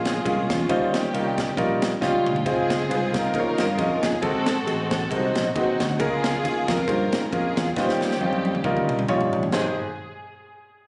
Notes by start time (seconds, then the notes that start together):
Already playing: A#1 G#3 A#3 C#4 F4 G#4
0.05 snare, ride
0.25 C2 G#3 A#3 C#4 F4 G#4, kick, ride
0.49 E2 A#3 C#4 F4, kick, snare, ride
0.69 D#2 D#3 G3 C#4 D#4 F4 C5, kick, ride
0.93 A#3 C#4 G4, snare, ride
1.13 C2 G3 C#4 D#4 F4 A#4, ride
1.38 kick, snare, ride
1.57 A#1 G3 C#4 D#4 F4 A#4, kick, ride
1.82 snare, ride
2.01 C#2 G3 A#3 C#4 D#4 F4 G4, kick, snare
2.26 D2, mid tom
2.36 floor tom
2.45 C#2 C#3 G#3 C4 D#4 F4 G#4 C5, kick, ride
2.70 snare, ride
2.89 C2 G#3 C4 D#4 F4 B4, ride
2.95 C5
3.14 D#4 F4 A#4, kick, snare, ride
3.34 D#2 G#3 C#4 D#4 F4 C5, kick, ride
3.40 C#5
3.58 G2, snare, ride
3.78 F2 G#3 C#4 D#4 F4 D#5, kick, ride
4.02 D#2 G#4, kick, snare, ride
4.22 G#1 G#2 G#3 C4 D#4 F#4 A4, kick, ride
4.46 snare, ride
4.66 A1 G#3 C4 D#4 F#4 G#4, ride
4.91 A4, kick, snare, ride
5.10 C2 C3 G#3 C4 D#4 F#4 A#4, kick, ride
5.17 C5
5.35 A#1, snare, ride
5.55 D#2 G#3 C4 D#4 F#4 B4, kick, ride
5.61 C5
5.80 D2, kick, snare, ride
5.99 C#2 C#3 G#3 A#3 C#4 D#4 F4 G#4 A#4, kick, ride
6.05 F4
6.24 snare, ride
6.43 D#2 G#3 A#3 C#4 F4 G#4, ride
6.68 F2 F4 A#4, kick, snare, ride
6.88 G2 G#3 A#3 C#4 F4 C5, kick, ride
7.13 G#2, snare, ride
7.32 F2 G#3 A#3 C#4 F4 G#4 A#4, kick, ride
7.57 E2, kick, snare, ride
7.76 D#2 D#3 G3 A#3 C#4 D#4 F4 G4 B4, kick, snare
7.82 C5
7.89 snare
8.01 snare
8.11 snare
8.20 F2 F3 C#4 D#4 F4 C5, high tom
8.26 G3
8.33 high tom
8.45 high tom
8.55 mid tom
8.64 C#2 G3 C#4 D#4 F4 A#4, kick, mid tom
8.77 mid tom
8.89 C2, mid tom
8.99 mid tom
9.08 A#1 G3 C#4 D#4 F4 C#5, kick, mid tom
9.21 floor tom
9.33 A1, floor tom
9.43 floor tom
9.52 G#1 G#3 D#4 G4 G#4 C5, snare, floor tom, splash